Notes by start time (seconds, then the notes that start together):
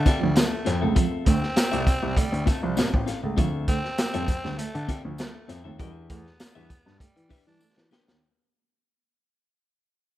0.05 G3 C4 F4 A4 E5, muted clean electric guitar stroke, kick, snare, closed hi-hat, tambourine
0.20 D2 F3, muted clean electric guitar stroke
0.35 G3 A3, muted clean electric guitar stroke, snare, closed hi-hat, tambourine
0.51 muted clean electric guitar stroke
0.65 F2 C4 F4 A4 E5, snare, closed hi-hat
0.81 C#2 A3 C4 F4 A4 E5
0.95 F3 C4 F4 A4 E5, kick, closed hi-hat, tambourine
1.12 muted clean electric guitar stroke
1.25 D2 A3 C4, kick, closed hi-hat, tambourine
1.42 muted clean electric guitar stroke, snare
1.56 muted clean electric guitar stroke, snare, closed hi-hat, tambourine
1.71 C2 G3 C4 F4 A4 E5, closed hi-hat
1.86 muted clean electric guitar stroke, kick, closed hi-hat, tambourine
2.03 C2 G3, muted clean electric guitar stroke
2.17 D2 G3 A3, muted clean electric guitar stroke, kick, closed hi-hat, tambourine
2.32 D2, muted clean electric guitar stroke, closed hi-hat
2.46 A3 C4 F4 A4 E5, muted clean electric guitar stroke, kick, snare, closed hi-hat, tambourine
2.62 C2 F3, muted clean electric guitar stroke
2.77 A1 G3 C4 F4 A4 E5, snare, closed hi-hat, tambourine
2.93 A1, muted clean electric guitar stroke, kick
3.06 C4 F4 A4 F5, snare, closed hi-hat, tambourine
3.23 C#2 A3, muted clean electric guitar stroke
3.37 D2 F3 C4 F4 A4 E5, kick, closed hi-hat, tambourine
3.54 muted clean electric guitar stroke
3.68 A3 C4, kick, closed hi-hat, tambourine
3.84 muted clean electric guitar stroke, snare
3.98 muted clean electric guitar stroke, snare, closed hi-hat, tambourine
4.14 F2 G3 C4 F4 A4 E5, closed hi-hat
4.28 muted clean electric guitar stroke, kick, closed hi-hat, tambourine
4.44 D2 G3, muted clean electric guitar stroke, snare
4.58 D3 A3, muted clean electric guitar stroke, closed hi-hat, tambourine
4.74 D3, muted clean electric guitar stroke, closed hi-hat
4.88 G3 C4 F4 A4 E5, muted clean electric guitar stroke, kick, snare, closed hi-hat, tambourine
5.04 D2 F3, muted clean electric guitar stroke
5.18 G3 A3, muted clean electric guitar stroke, snare, closed hi-hat, tambourine
5.35 muted clean electric guitar stroke
5.48 F2 C4 F4 A4 E5, snare, closed hi-hat, tambourine
5.64 D#2 A3 C4 F4 A4 E5
5.78 E2 G3 C#4 F#4 A#4 D#5, kick, closed hi-hat, tambourine
5.90 D4 G4 B4 E5
5.97 muted clean electric guitar stroke
6.09 E2 A3 B3, kick, closed hi-hat, tambourine
6.26 muted clean electric guitar stroke, snare
6.40 muted clean electric guitar stroke, snare, closed hi-hat, tambourine
6.55 E2 G3 D4 G4 B4 E5
6.70 muted clean electric guitar stroke, kick, closed hi-hat, tambourine
6.86 G2 G3, muted clean electric guitar stroke, snare
6.99 G3 A3, muted clean electric guitar stroke, kick, closed hi-hat, tambourine
7.16 E3, muted clean electric guitar stroke, closed hi-hat
7.29 D4 G4 B4 E5, muted clean electric guitar stroke, kick, snare, open hi-hat, tambourine
7.45 E3 G3 D4, muted clean electric guitar stroke
7.60 A3, muted clean electric guitar stroke, tambourine
7.76 E3, muted clean electric guitar stroke, snare
7.91 D4 G4 B4 G5, snare, tambourine
8.07 D#2 B3, muted clean electric guitar stroke, snare